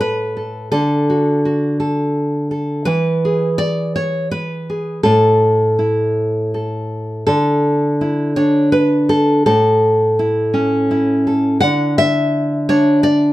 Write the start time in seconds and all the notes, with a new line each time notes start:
Already playing: A2 A4
0.01 B4
0.37 A4
0.72 D3 A4
1.10 F#4
1.45 F#4
1.80 A4
2.51 A4
2.85 E3 B4
3.25 G#4
3.58 D5
3.96 C#5
4.31 B4
4.70 G#4
5.03 A2 A4
5.79 E4
6.54 A4
7.27 D3 A4
8.01 E4
8.36 D4 C#5
8.72 B4
9.09 A4
9.46 A2 A4
10.19 E4
10.54 C#4
10.91 E4
11.27 A4
11.60 D3 F#5
11.98 E5
12.69 D4 C#5
13.03 D5